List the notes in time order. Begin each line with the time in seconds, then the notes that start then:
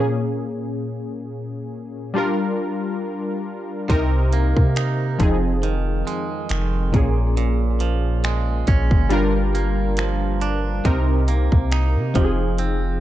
Already playing: A#2 A#3
0.00 C#4 G#4
2.14 G3 D4 F4
2.18 A#4
3.89 C2 C3 C4 D#4 A#4, kick, closed hi-hat
4.33 A#3, closed hi-hat
4.57 C3, kick
4.76 D#4, finger snap, closed hi-hat
5.18 F1 F2 F3 C4 D#4, kick, closed hi-hat
5.22 G#4
5.63 D#3, closed hi-hat
6.07 G#3, closed hi-hat
6.49 F1 D#3, finger snap, closed hi-hat
6.92 A#1 A#2 A#3 C#4 G#4, kick, closed hi-hat
7.37 A#2, closed hi-hat
7.80 F3, closed hi-hat
8.24 G#3, finger snap, closed hi-hat
8.67 A#1 C#4, kick, closed hi-hat
8.91 G1, kick
9.09 G2 G3 D4 F4 A#4, closed hi-hat
9.55 A#3, closed hi-hat
9.97 F3, finger snap, closed hi-hat
10.41 D4, closed hi-hat
10.84 C2 C3 C4 D#4 A#4, kick, closed hi-hat
11.28 A#3, closed hi-hat
11.52 C2, kick
11.72 D#4, finger snap, closed hi-hat
11.96 C3
12.14 F1 F3 C4 D#4 G4, kick, closed hi-hat
12.24 G#4
12.58 C4, closed hi-hat